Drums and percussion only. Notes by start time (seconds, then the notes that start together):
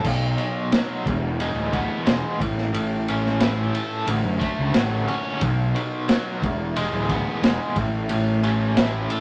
0.04 kick, crash
0.38 ride
0.72 snare, ride
1.06 kick, ride
1.40 ride
1.73 kick, ride
2.07 snare, ride
2.40 kick, ride
2.58 snare
2.74 ride
3.08 ride
3.26 snare
3.40 snare, ride
3.75 ride
4.07 ride
4.41 kick, ride
4.74 snare, ride
5.08 ride
5.41 kick, ride
5.76 ride
6.09 snare, ride
6.42 kick, ride
6.76 ride
7.09 kick, ride
7.43 snare, ride
7.76 kick, ride
8.09 ride
8.43 ride
8.77 snare, ride
9.10 ride